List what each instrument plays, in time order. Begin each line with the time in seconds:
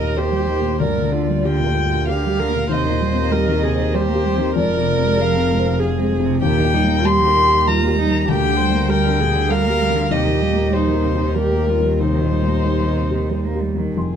Already playing: upright piano D#2 A#2 A#3 G4 A#4, double bass D#2, viola A#4, violin D#5
0.01 cello A#2
0.16 cello D#3, viola G4, upright piano A#4, violin C5
0.31 cello G3
0.39 upright piano G4
0.47 cello D#3
0.60 cello A#2, upright piano A#3
0.80 upright piano D2, double bass D2, cello G2, viola A#4, violin D5
0.95 cello A#2
1.02 upright piano D3
1.13 cello D3, viola F4
1.23 upright piano A#3
1.28 cello G3
1.43 cello D3, upright piano G4, violin G5
1.61 cello A#2
1.66 upright piano A#4
1.77 cello G2
1.88 upright piano G4
1.93 cello A#2
2.08 cello D3, viola G4, upright piano A#4, violin F5
2.25 cello G3, upright piano G4
2.39 cello D3, viola A#4
2.48 upright piano A#3
2.55 cello A#2
2.69 upright piano D#2, double bass D#2, cello C3, viola C5, violin D#5
2.84 cello D#3
2.90 upright piano A#2
3.01 cello G3
3.12 upright piano C4
3.18 cello A#3
3.32 cello G3, upright piano G4, viola A#4
3.48 cello D#3, upright piano A#4
3.63 cello C3, viola G#4
3.74 upright piano C5
3.78 cello D#3
3.93 cello G3, viola G4, upright piano A#4, violin C5
4.10 cello A#3
4.15 upright piano G4
4.25 cello G3
4.35 cello D#3, upright piano C4
4.55 double bass F1, upright piano F2, cello G#2, viola A#4, violin D5
4.71 cello C3
4.77 upright piano C3
4.89 cello F3
4.96 upright piano C4
5.04 cello G#3
5.16 cello F3, upright piano G#4
5.21 violin F5
5.36 cello C3, upright piano C4
5.52 cello G#2
5.58 upright piano C5
5.66 cello C3
5.79 cello F3, upright piano G#4, viola G#4
5.98 cello G#3, upright piano C4
6.13 cello F3
6.20 upright piano C3
6.26 cello C3
6.41 double bass D#2, upright piano D#2, cello A#2, viola G4, violin G5
6.58 cello D#3
6.63 upright piano A#2
6.73 cello G3, viola D#4
6.84 upright piano G3
6.89 cello A#3
7.05 cello G3, upright piano G4, viola G4, violin C6
7.20 cello D#3
7.27 upright piano A#4
7.36 cello A#2
7.47 upright piano G4
7.52 cello D#3
7.66 cello G3, viola F4, upright piano A#4, violin A#5
7.82 cello A#3
7.87 upright piano G4
7.96 cello G3, viola D#4
8.07 upright piano G3
8.11 cello D#3
8.27 double bass D2, upright piano D2, cello A#2, viola G4, violin G5
8.44 cello D3, upright piano D3
8.57 cello G3, viola C5
8.70 upright piano G3
8.74 cello A#3
8.88 cello G3, upright piano G4, viola A#4, violin G5
9.05 cello D3, upright piano A#4
9.20 cello A#2, viola G#4
9.28 upright piano G4
9.35 cello D3
9.49 cello G3, upright piano A#4, viola A#4, violin F5
9.66 cello A#3, upright piano G4
9.81 cello G3
9.90 upright piano G3
9.94 cello D3
10.10 upright piano D#2, double bass D#2, cello C3, viola G4, violin D#5
10.25 cello D#3
10.31 upright piano A#2
10.41 cello G3
10.51 upright piano G3
10.55 cello A#3
10.71 cello G3, upright piano G4, violin C5
10.76 viola D#4
10.88 cello D#3
10.94 upright piano A#4
11.03 cello C3
11.14 cello D#3, upright piano G4
11.34 cello G3, violin A#4, upright piano A#4
11.38 viola G4
11.51 cello A#3
11.56 upright piano G4
11.68 cello G3, viola F4
11.78 upright piano G3
11.85 cello D#3
11.99 upright piano D#2, cello C3, viola D#4, violin C5
12.15 cello D#3
12.21 upright piano A#2
12.31 cello G3
12.43 upright piano G3
12.48 cello A#3
12.65 cello G3, upright piano G4
12.81 cello D#3
12.87 upright piano A#4
12.97 cello C3
13.11 upright piano G4
13.15 cello D#3
13.29 cello G3, upright piano A#4
13.46 cello A#3
13.55 upright piano G4
13.61 cello G3
13.75 cello D#3, upright piano G3
13.95 double bass F1, upright piano F2 C6, viola C4, violin G#4